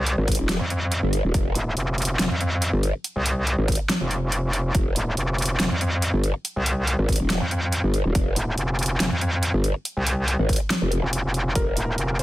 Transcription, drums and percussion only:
0.07 closed hi-hat
0.28 kick, closed hi-hat
0.32 closed hi-hat
0.35 closed hi-hat
0.49 snare, closed hi-hat
0.70 closed hi-hat
0.92 closed hi-hat
1.13 closed hi-hat
1.34 kick, closed hi-hat
1.55 closed hi-hat
1.77 closed hi-hat
1.98 closed hi-hat
2.02 closed hi-hat
2.05 closed hi-hat
2.19 snare, closed hi-hat
2.41 closed hi-hat
2.62 closed hi-hat
2.83 closed hi-hat
3.04 closed hi-hat
3.26 closed hi-hat
3.47 closed hi-hat
3.68 kick, closed hi-hat
3.72 closed hi-hat
3.75 closed hi-hat
3.89 snare, closed hi-hat
4.11 closed hi-hat
4.32 closed hi-hat
4.53 closed hi-hat
4.75 kick, closed hi-hat
4.96 closed hi-hat
5.17 closed hi-hat
5.38 closed hi-hat
5.42 closed hi-hat
5.46 closed hi-hat
5.60 snare, closed hi-hat
5.81 closed hi-hat
6.02 closed hi-hat
6.24 closed hi-hat
6.45 closed hi-hat
6.66 closed hi-hat
6.87 closed hi-hat
7.09 kick, closed hi-hat
7.12 closed hi-hat
7.16 closed hi-hat
7.30 snare, closed hi-hat
7.51 closed hi-hat
7.72 closed hi-hat
7.94 closed hi-hat
8.15 kick, closed hi-hat
8.36 closed hi-hat
8.58 closed hi-hat
8.79 closed hi-hat
8.83 closed hi-hat
8.86 closed hi-hat
9.00 snare, closed hi-hat
9.21 closed hi-hat
9.43 closed hi-hat
9.64 closed hi-hat
9.85 closed hi-hat
10.06 closed hi-hat
10.28 closed hi-hat
10.49 kick, closed hi-hat
10.53 closed hi-hat
10.56 closed hi-hat
10.70 snare, closed hi-hat
10.92 closed hi-hat
11.13 closed hi-hat
11.34 closed hi-hat
11.55 kick, closed hi-hat
11.77 closed hi-hat
11.98 closed hi-hat
12.19 closed hi-hat

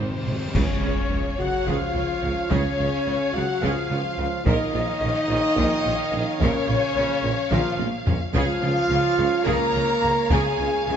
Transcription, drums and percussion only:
0.27 taiko low-mid
0.55 concert bass drum, taiko, crash
0.84 taiko rim
1.68 taiko
2.51 taiko
3.63 taiko
3.91 taiko rim
4.46 taiko
5.30 taiko rim
5.58 taiko
6.40 taiko
7.52 taiko mid
7.79 taiko high
8.07 taiko low
8.35 taiko
9.47 taiko
10.30 taiko

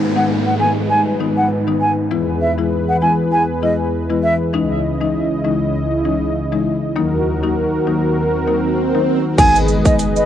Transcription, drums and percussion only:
9.38 kick, closed hi-hat, crash, maracas
9.55 maracas
9.68 maracas
9.85 kick, maracas
9.99 closed hi-hat, maracas
10.16 maracas

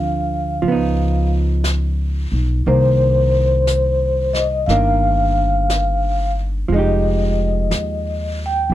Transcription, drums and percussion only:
0.62 brush sweep
1.64 brush sweep, snare, hi-hat pedal
2.66 brush sweep
3.67 brush sweep, snare, hi-hat pedal
4.34 snare
4.69 brush sweep, snare
5.70 brush sweep, snare, hi-hat pedal
6.70 brush sweep
7.71 brush sweep, snare, hi-hat pedal

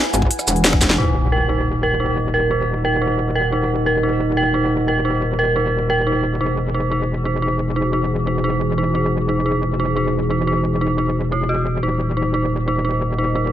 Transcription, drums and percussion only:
0.14 closed hi-hat, shaker
0.22 kick
0.31 closed hi-hat
0.39 cross-stick, closed hi-hat, shaker
0.48 closed hi-hat, shaker
0.56 closed hi-hat
0.64 snare, closed hi-hat
0.73 kick, cross-stick
0.81 kick, snare, closed hi-hat, shaker
0.90 snare

